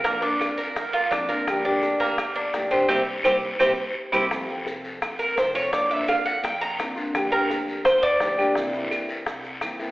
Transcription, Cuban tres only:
\new Staff \with { instrumentName = "Cuban tres" } { \time 4/4 \key f \major \tempo 4 = 169 bes8 d'4 bes'4 f'8 d'8 bes'8~ | bes'8 d'4 bes4 d'4 c''8 | <c' e' g'>8 r8 <c' e' g'>8 r8 <c' e' g'>8 r4 <c' e' g'>8 | r2 r8 bes'8 c''8 des''8 |
d''8 e''8 f''8 ges''8 g''8 bes''8 r4 | r8 bes'4. c''8 d''4. | r1 | }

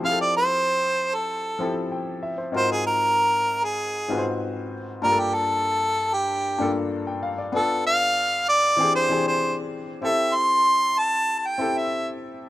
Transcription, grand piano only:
\new Staff \with { instrumentName = "Grand piano" } { \time 4/4 \key g \dorian \tempo 4 = 96 << { r2. g''8 e''16 c''16~ | c''16 r2. r8. | r2. r16 g''16 f''16 d''16~ | d''16 r2. r8. |
r1 | } \\ { <f c' e' g' aes' a'>4. r4 <f c' e' g' a'>4 r8 | <aes, c' ees' f' ges' bes'>4. r4 <aes, c' ees' f' ges' b' c''>4 r8 | <g, bes d' f' g' a'>4. r4 <g, bes d' f' a'>4 r8 | <b d' f' a'>4. r8 <e bis d' g' gis'>8 <e bis d' g' gis'>4 r8 |
<c' e' g' a'>4. r4 <c' e' g' a'>4 r8 | } >> }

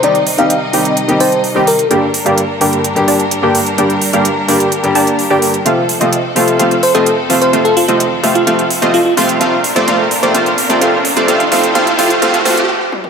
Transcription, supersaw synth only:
\new Staff \with { instrumentName = "Supersaw synth" } { \time 4/4 \key g \minor \tempo 4 = 128 <c' ees' g' ees'' g''>16 r8 <c' ees' g' ees'' f''>16 r8 <c' ees' g' ees'' g''>4 <c' ees' g' ees'' a''>8 r16 <c' ees' g' ees'' g''>16 r8 | <bes d' g' d'' g''>16 r8 <bes d' g' d'' f''>16 r8 <bes d' g' d'' g''>4 <bes d' g' d'' a''>8 r16 <bes d' g' d'' g''>16 r8 | <bes d' g' d'' g''>16 r8 <bes d' g' d'' f''>16 r8 <bes d' g' d'' g''>4 <bes d' g' d'' a''>8 r16 <bes d' g' d'' g''>16 r8 | <a c' f' c'' f''>16 r8 <a c' f' c'' ees''>16 r8 <a c' f' c'' f''>8 <a c' f' c'' f''>16 r8 <a c' f' c'' ees''>16 r8 <a c' f' c'' f''>8 |
<a c' f' c'' f''>16 r8 <a c' f' c'' ees''>16 r8 <a c' f' c'' f''>8 <a c' f' c'' f''>16 r8 <a c' f' c'' ees''>16 r8 <a c' f' c'' f''>8 | <a c' f' c'' f''>16 r8 <a c' f' c'' d''>16 <a c' f' c'' f''>16 r8 <a c' f' c'' d''>16 <a c' f' c'' f''>16 r8 <a c' f' c'' d''>16 <a c' f' c'' f''>16 r8 <a c' f' c'' d''>16 | <a c' f' c'' f''>16 r16 <a c' f' c'' f''>16 r16 <a c' f' c'' f''>16 r16 <a c' f' c'' f''>16 r16 <a c' f' c'' f''>16 r16 <a c' f' c'' f''>16 r4 r16 | }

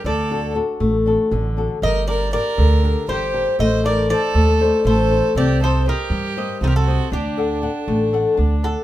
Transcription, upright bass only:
\new Staff \with { instrumentName = "Upright bass" } { \clef bass \time 7/8 \key d \phrygian \tempo 4 = 119 d,4. a,,4 a,,4 | g,,4. d,4 g,,4 | a,,4. ees,4 a,,4 | c,4. g,4 c,4 |
d,4. a,,4 d,4 | }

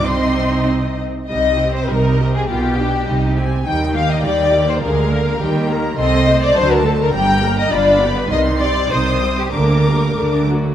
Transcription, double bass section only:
\new Staff \with { instrumentName = "Double bass section" } { \clef bass \time 2/4 \key c \minor \tempo 4 = 102 c,4. r8 | c,4 c,4 | b,,4 c,4 | ees,4 ees,4 |
d,4 ees,4 | \key g \minor c,4 d,4 | g,,4 g,,4 | c,4 c,4 |
d,4 d,4 | }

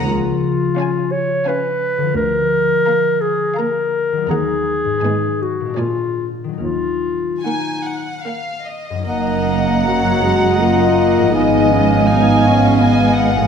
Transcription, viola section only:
\new Staff \with { instrumentName = "Viola section" } { \time 3/4 \key ees \minor \tempo 4 = 82 r4 des'4 des'4 | r4 bes4 bes4 | bes4 ces'4 bes4 | r4 bes4 bes4 |
bes4 ges8 aes8 bes8 bes8 | ces'4 ees'8 des'8 ces'4 | }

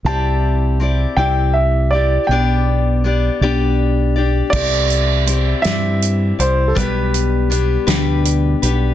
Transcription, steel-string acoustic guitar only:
\new Staff \with { instrumentName = "Steel-string acoustic guitar" } { \time 6/8 \key c \lydian \tempo 4. = 54 <c' e' g' d''>4 <c' e' g' d''>8 <c' e' g' d''>4 <e' g' d''>8 | <b d' g' d''>4 <b d' g' d''>8 <b d' g' d''>4 <d' g' d''>8 | <c' e' g' d''>4 <c' e' g' d''>8 <c' e' g' d''>4 <e' g' d''>8 | <b, g b d' g' b'>4 <b d' g' b'>8 <b, g b d' g' b'>4 <b d' g' b'>8 | }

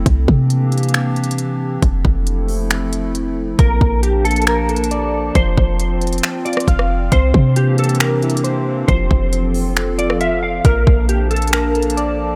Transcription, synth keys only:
\new Staff \with { instrumentName = "Synth keys" } { \time 4/4 \key bes \lydian \tempo 4 = 136 r1 | r1 | bes2~ bes8 a'8 d''4 | f2~ f8 f'8 f''4 |
c'2~ c'8 e'8 c''4 | f2~ f8 f'8 f''4 | bes2~ bes8 a'8 d''4 | }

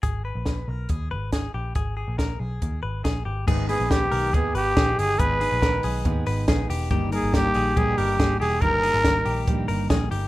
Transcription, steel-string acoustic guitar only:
\new Staff \with { instrumentName = "Steel-string acoustic guitar" } { \clef bass \time 4/4 \key gis \minor \tempo 4 = 140 r1 | r1 | <gis, dis gis b dis'>8 <gis b dis'>8 <dis gis b dis'>4 <gis, dis gis b dis'>4 <dis gis b dis'>4 | <gis, dis gis b dis'>8 <gis b dis'>8 <dis gis b dis'>4 <gis, dis gis b dis'>4 <dis gis b dis'>4 |
<g, dis g ais dis'>8 <g ais dis'>8 <dis g ais dis'>4 <g, dis g ais dis'>4 <dis g ais dis'>4 | <g, dis g ais dis'>8 <g ais dis'>8 <dis g ais dis'>4 <g, dis g ais dis'>4 <dis g ais dis'>8 <g ais dis'>8 | }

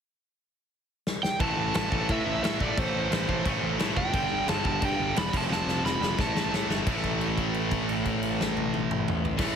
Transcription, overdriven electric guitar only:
\new Staff \with { instrumentName = "Overdriven electric guitar" } { \time 4/4 \key a \minor \tempo 4 = 176 r2. r8 g''8 | a''4 a''4 e''4 e''8 d''8 | c''2 r4. g''8~ | g''4 a''8 a''8 g''4 b''8 a''8 |
a''4 b''4 a''4 r4 | r1 | r1 | }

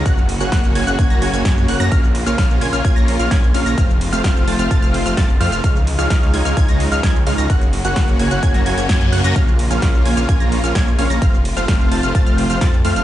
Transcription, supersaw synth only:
\new Staff \with { instrumentName = "Supersaw synth" } { \time 4/4 \key bes \minor \tempo 4 = 129 <bes des' ges' des'' ges''>16 r8 <bes des' ges' des'' ges''>16 <bes des' ges' des'' ges''>8 <bes des' ges' des'' aes''>16 <bes des' ges' des'' ges''>16 <bes des' ges' des'' aes''>16 <bes des' ges' des'' bes''>16 <bes des' ges' des'' aes''>16 <bes des' ges' des'' aes''>16 <bes des' ges' des'' aes''>8 <bes des' ges' des'' ges''>16 <bes des' ges' des'' bes''>16 | <bes des' f' des'' f''>16 r8 <bes des' f' des'' f''>16 <bes des' f' des'' f''>8 <bes des' f' des'' aes''>16 <bes des' f' des'' f''>16 <bes des' f' des'' aes''>16 <bes des' f' des'' bes''>8 <bes des' f' des'' f''>16 <bes des' f' des'' aes''>16 r16 <bes des' f' des'' f''>16 <bes des' f' des'' bes''>16 | <a c' f' c'' f''>16 r8 <a c' f' c'' f''>16 <a c' f' c'' f''>8 <a c' f' c'' a''>16 <a c' f' c'' f''>16 <a c' f' c'' a''>16 <a c' f' c'' f''>8 <a c' f' c'' f''>16 <a c' f' c'' a''>16 r16 <a c' f' c'' f''>16 <a c' f' c'' f''>16 | <aes ees' f' des'' f''>16 r8 <aes ees' f' des'' f''>16 <aes ees' f' des'' f''>8 <aes ees' f' des'' aes''>16 <aes ees' f' des'' f''>16 <aes ees' f' des'' aes''>16 <aes ees' f' des'' bes''>8 <aes ees' f' des'' f''>16 <aes ees' f' des'' aes''>16 r16 <aes ees' f' des'' f''>16 <aes ees' f' des'' bes''>16 |
<bes des' ges' des'' ges''>16 r8 <bes des' ges' des'' ges''>16 <bes des' ges' des'' ges''>8 <bes des' ges' des'' aes''>16 <bes des' ges' des'' ges''>16 <bes des' ges' des'' aes''>16 <bes des' ges' des'' bes''>16 <bes des' ges' des'' aes''>16 <bes des' ges' des'' aes''>16 <bes des' ges' des'' aes''>8 <bes des' ges' des'' ges''>16 <bes des' ges' des'' bes''>16 | <bes des' f' des'' f''>16 r8 <bes des' f' des'' f''>16 <bes des' f' des'' f''>8 <bes des' f' des'' aes''>16 <bes des' f' des'' f''>16 <bes des' f' des'' aes''>16 <bes des' f' des'' bes''>8 <bes des' f' des'' f''>16 <bes des' f' des'' aes''>16 r16 <bes des' f' des'' f''>16 <bes des' f' des'' bes''>16 | <a c' f' c'' f''>16 r8 <a c' f' c'' f''>16 <a c' f' c'' f''>8 <a c' f' c'' a''>16 <a c' f' c'' f''>16 <a c' f' c'' a''>16 <a c' f' c'' f''>8 <a c' f' c'' f''>16 <a c' f' c'' a''>16 r16 <a c' f' c'' f''>16 <a c' f' c'' f''>16 | }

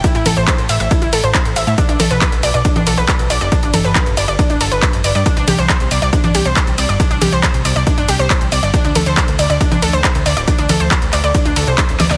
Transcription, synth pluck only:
\new Staff \with { instrumentName = "Synth pluck" } { \time 4/4 \key c \lydian \tempo 4 = 138 e'16 e'16 a'16 c''16 c''16 r16 e''16 e''16 e'16 e'16 a'16 c''16 c''16 r16 e''16 e''16 | d'16 d'16 a'16 b'16 b'16 r16 d''16 d''16 d'16 d'16 a'16 b'16 b'16 r16 d''16 d''16 | d'16 d'16 a'16 b'16 b'16 r16 d''16 d''16 d'16 d'16 a'16 b'16 r8 d''16 d''16 | d'16 d'16 g'16 c''16 c''16 r16 d''16 d''16 d'16 d'16 g'16 c''16 c''16 r16 d''16 d''16 |
d'16 d'16 g'16 c''16 c''16 r16 d''16 d''16 d'16 d'16 g'16 c''16 c''16 r16 d''16 d''16 | d'16 d'16 a'16 c''16 c''16 r16 d''16 d''16 d'16 d'16 a'16 c''16 r8 d''16 d''16 | d'16 d'16 a'16 c''16 c''16 r16 d''16 d''16 d'16 d'16 a'16 c''16 c''16 r16 d''16 d''16 | }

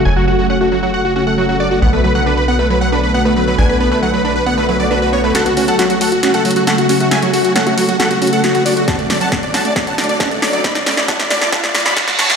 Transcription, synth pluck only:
\new Staff \with { instrumentName = "Synth pluck" } { \time 4/4 \key fis \minor \tempo 4 = 136 fis16 fis16 fis'16 r16 cis'16 a16 fis16 fis16 fis'16 r16 cis'16 a16 fis16 fis16 fis'16 r16 | b16 a16 fis16 fis16 d'16 r16 b16 a16 fis16 fis16 d'16 r16 b16 a16 fis16 fis16 | d'16 r16 b16 a16 fis16 fis16 d'16 r16 b16 a16 fis16 fis16 d'16 r16 b16 a16 | fis'16 r16 cis'16 a16 fis16 fis16 fis'16 r16 cis'16 a16 fis16 fis16 fis'16 r16 cis'16 a16 |
fis16 fis16 fis'16 r16 cis'16 a16 fis16 fis16 fis'16 r16 cis'16 a16 fis16 fis16 fis'16 r16 | cis'16 a16 fis16 fis16 d'16 r16 cis'16 a16 fis16 fis16 d'16 r16 cis'16 a16 fis16 fis16 | d'16 r16 cis'16 a16 fis16 fis16 d'16 r16 cis'16 a16 fis16 fis16 d'16 r16 cis'16 a16 | }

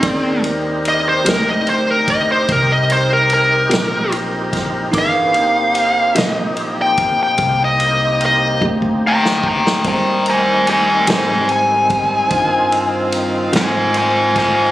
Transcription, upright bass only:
\new Staff \with { instrumentName = "Upright bass" } { \clef bass \time 12/8 \key c \minor \tempo 4. = 49 ees,4. d,4. c,4. bes,,4. | g,,4. bes,,4. c,4. d,4. | ees,4. aes,4. g,4. aes,4. | }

